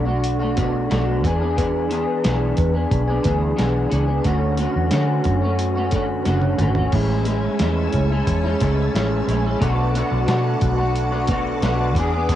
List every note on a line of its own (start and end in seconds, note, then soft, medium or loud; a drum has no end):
0.00 0.87 B1 medium
0.05 0.41 A3 soft
0.05 0.40 D4 soft
0.05 0.38 F#4 soft
0.24 closed hi-hat loud
0.40 0.57 A3 soft
0.40 0.58 D4 soft
0.40 0.57 F#4 medium
0.57 0.89 B2 medium
0.57 0.90 A3 medium
0.57 0.90 D4 medium
0.57 0.91 F#4 medium
0.57 kick loud
0.57 closed hi-hat medium
0.90 1.24 B1 medium
0.90 1.24 B2 medium
0.90 1.24 A3 medium
0.90 1.25 D4 medium
0.90 1.25 F#4 medium
0.90 snare medium
0.90 closed hi-hat medium
1.24 2.05 E2 medium
1.24 1.41 E3 medium
1.24 1.41 B3 medium
1.24 1.41 D4 medium
1.24 1.39 G#4 medium
1.24 kick medium
1.24 closed hi-hat medium
1.40 1.56 B3 soft
1.40 1.57 D4 medium
1.40 1.57 G#4 medium
1.56 1.88 E3 medium
1.56 1.89 B3 medium
1.56 1.91 D4 medium
1.56 1.91 G#4 medium
1.56 kick medium
1.56 closed hi-hat medium
1.89 2.22 E3 medium
1.89 2.23 B3 medium
1.89 2.24 D4 medium
1.89 2.25 G#4 medium
1.89 closed hi-hat medium
2.24 2.52 B1 medium
2.24 2.75 E3 medium
2.24 2.75 B3 medium
2.24 2.74 D4 medium
2.24 2.72 G#4 medium
2.24 snare loud
2.24 closed hi-hat medium
2.57 2.85 E2 medium
2.57 kick medium
2.57 closed hi-hat medium
2.73 3.09 B3 soft
2.73 3.08 D4 soft
2.73 3.06 G#4 soft
2.91 3.18 B1 medium
2.91 kick loud
2.91 closed hi-hat medium
3.07 3.23 B3 medium
3.07 3.24 D4 medium
3.07 3.25 G#4 medium
3.23 3.52 D2 medium
3.23 3.55 E3 medium
3.23 3.56 B3 medium
3.23 3.57 D4 medium
3.23 3.57 G#4 medium
3.23 kick medium
3.23 closed hi-hat medium
3.56 3.86 B1 medium
3.56 3.88 E3 medium
3.56 3.89 B3 medium
3.56 3.91 D4 medium
3.56 3.92 G#4 medium
3.56 snare loud
3.56 closed hi-hat medium
3.90 4.19 C#2 loud
3.90 4.08 E3 medium
3.90 4.08 B3 medium
3.90 4.07 D4 medium
3.90 4.05 G#4 medium
3.90 closed hi-hat medium
4.06 4.25 B3 soft
4.06 4.25 D4 soft
4.06 4.24 G#4 medium
4.24 4.66 D2 medium
4.24 4.56 D3 medium
4.24 4.58 A3 medium
4.24 4.59 C#4 medium
4.24 4.59 F#4 medium
4.24 kick medium
4.24 closed hi-hat medium
4.57 4.91 D3 medium
4.57 4.91 A3 medium
4.57 4.92 C#4 medium
4.57 closed hi-hat medium
4.62 4.93 F#4 medium
4.76 4.89 E2 medium
4.91 5.43 D3 medium
4.91 5.20 D3 medium
4.91 5.43 A3 medium
4.91 5.43 C#4 medium
4.91 5.41 F#4 medium
4.91 snare loud
4.91 closed hi-hat loud
5.24 6.22 F#2 medium
5.24 kick medium
5.24 closed hi-hat medium
5.42 5.77 A3 soft
5.42 5.76 C#4 soft
5.42 5.74 F#4 soft
5.59 closed hi-hat medium
5.75 5.93 A3 soft
5.75 5.94 C#4 soft
5.75 5.93 F#4 medium
5.91 6.24 D3 medium
5.91 6.25 A3 medium
5.91 6.26 C#4 medium
5.91 kick loud
5.91 closed hi-hat medium
5.96 6.26 F#4 medium
6.26 6.53 F#1 medium
6.26 6.58 D3 medium
6.26 6.59 A3 medium
6.26 6.60 C#4 medium
6.26 6.60 F#4 loud
6.26 snare medium
6.26 closed hi-hat medium
6.42 high tom medium
6.59 6.87 G#1 medium
6.59 6.76 D3 medium
6.59 6.77 A3 medium
6.59 6.76 C#4 medium
6.59 6.74 F#4 medium
6.59 closed hi-hat medium
6.59 mid tom medium
6.75 6.93 A3 soft
6.75 6.93 C#4 medium
6.75 6.93 F#4 medium
6.75 floor tom medium
6.92 7.47 A1 loud
6.92 7.25 A2 medium
6.92 7.26 G#3 medium
6.92 7.27 C#4 medium
6.92 7.28 E4 medium
6.92 9.57 C#5 medium
6.92 9.58 G#5 medium
6.92 11.90 A5 medium
6.92 9.57 E6 medium
6.92 kick medium
6.92 crash medium
7.25 7.59 A2 medium
7.25 7.60 G#3 medium
7.25 7.61 C#4 medium
7.25 closed hi-hat medium
7.30 7.62 E4 medium
7.59 7.87 E2 medium
7.59 8.10 A2 medium
7.59 8.11 G#3 medium
7.59 8.11 C#4 medium
7.59 8.09 E4 loud
7.59 snare loud
7.59 closed hi-hat medium
7.92 8.21 C#2 medium
7.92 kick medium
7.92 closed hi-hat medium
8.10 8.46 G#3 soft
8.10 8.44 C#4 soft
8.10 8.43 E4 medium
8.27 8.54 E2 medium
8.27 kick medium
8.27 closed hi-hat medium
8.44 8.60 G#3 medium
8.44 8.61 C#4 medium
8.44 8.61 E4 medium
8.60 8.88 C#2 medium
8.60 8.93 A2 medium
8.60 8.94 G#3 medium
8.60 8.95 C#4 medium
8.60 8.96 E4 medium
8.60 kick medium
8.60 closed hi-hat medium
8.94 9.21 A1 medium
8.94 9.26 A2 medium
8.94 9.28 G#3 medium
8.94 9.28 C#4 loud
8.94 9.29 E4 medium
8.94 snare loud
8.94 closed hi-hat medium
9.27 9.54 A#1 medium
9.27 9.44 A2 medium
9.27 9.45 G#3 medium
9.27 9.45 C#4 medium
9.27 9.43 E4 medium
9.27 closed hi-hat medium
9.44 9.63 G#3 soft
9.44 9.61 C#4 soft
9.44 9.61 E4 medium
9.59 10.01 B1 loud
9.59 9.93 B2 medium
9.59 9.94 A3 medium
9.59 9.94 D4 medium
9.59 9.95 F#4 medium
9.59 12.35 B4 medium
9.59 11.93 F#5 medium
9.59 12.35 D6 medium
9.59 kick medium
9.59 closed hi-hat loud
9.94 10.25 B2 medium
9.94 10.26 A3 medium
9.94 10.27 D4 medium
9.94 10.28 F#4 medium
9.94 closed hi-hat medium
10.12 10.25 B1 medium
10.27 10.77 B2 medium
10.27 10.54 B2 loud
10.27 10.78 A3 medium
10.27 10.77 D4 medium
10.27 10.75 F#4 medium
10.27 snare loud
10.27 closed hi-hat medium
10.61 11.58 B1 medium
10.61 kick medium
10.61 closed hi-hat medium
10.77 11.13 A3 soft
10.77 11.11 D4 medium
10.77 11.10 F#4 medium
10.96 closed hi-hat medium
11.11 11.28 A3 soft
11.11 11.29 D4 medium
11.11 11.28 F#4 medium
11.28 11.61 B2 medium
11.28 11.62 A3 medium
11.28 11.63 D4 medium
11.28 11.63 F#4 medium
11.28 kick loud
11.28 closed hi-hat medium
11.62 11.95 B1 medium
11.62 11.96 B2 medium
11.62 11.96 A3 medium
11.62 11.96 D4 medium
11.62 11.97 F#4 medium
11.62 snare medium
11.62 closed hi-hat medium
11.95 12.35 E2 loud
11.95 12.12 E3 medium
11.95 12.13 B3 medium
11.95 12.13 D4 medium
11.95 12.35 E5 medium
11.95 12.35 G#5 medium
11.95 kick medium
11.95 closed hi-hat medium
11.99 12.12 G#4 medium
12.13 12.29 B3 soft
12.13 12.31 D4 soft
12.13 12.29 G#4 medium
12.29 12.35 E3 medium
12.29 12.35 B3 medium
12.29 12.35 D4 medium
12.29 12.35 G#4 loud
12.29 kick medium
12.29 closed hi-hat medium